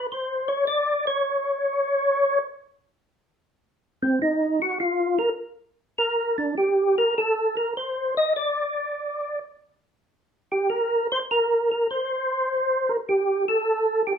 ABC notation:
X:1
M:4/4
L:1/16
Q:"Swing" 1/4=102
K:Cdor
V:1 name="Tonewheel organ"
c2 ^c2 d2 c8- c2 | z8 z2 C2 E2 ^F2 | F2 B2 z4 B2 D2 G2 B2 | A2 B2 c2 e2 d6- d z |
z6 G2 B2 c2 B2 B2 | c6 B2 G2 A4 G2 |]